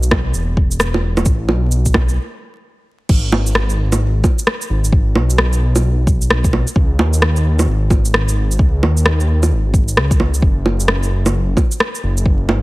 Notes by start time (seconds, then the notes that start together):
Already playing: B1
0.03 shaker
0.11 kick, cross-stick, low bongo
0.34 E1, shaker
0.57 kick
0.71 shaker
0.80 cross-stick, shaker
0.94 low bongo
1.17 low bongo, shaker
1.25 A1, kick, shaker
1.49 B1, low bongo
1.71 shaker
1.86 kick, shaker
1.94 kick, cross-stick, low bongo
2.09 shaker
3.09 G#1, kick, crash
3.32 low bongo
3.47 shaker
3.55 cross-stick
3.70 shaker
3.92 low bongo, shaker
4.24 kick, low bongo, shaker
4.39 shaker
4.47 cross-stick
4.62 shaker
4.70 G#1
4.84 shaker
4.92 G#1, kick
5.16 B1, low bongo
5.30 shaker
5.38 cross-stick
5.53 shaker
5.76 low bongo, shaker
6.07 kick, shaker
6.22 shaker
6.30 cross-stick
6.44 kick, shaker
6.53 low bongo
6.67 shaker
6.76 C#2, kick
6.99 D#2, low bongo
7.13 shaker
7.22 cross-stick
7.36 shaker
7.59 low bongo, shaker
7.68 G#1
7.90 kick, low bongo, shaker
8.05 shaker
8.14 cross-stick
8.29 shaker
8.51 shaker
8.59 C#2, kick
8.82 D#2, low bongo
8.97 shaker
9.06 cross-stick
9.20 shaker
9.43 low bongo, shaker
9.51 G#1
9.74 kick, shaker
9.88 shaker
9.97 C#2, cross-stick
10.11 kick, shaker
10.20 low bongo
10.34 shaker
10.42 F#1, kick
10.66 low bongo
10.80 shaker
10.88 cross-stick
11.03 shaker
11.26 low bongo, shaker
11.57 kick, low bongo, shaker
11.72 shaker
11.80 cross-stick
11.95 shaker
12.03 F#1
12.17 shaker
12.26 F#1, kick
12.49 G#1, low bongo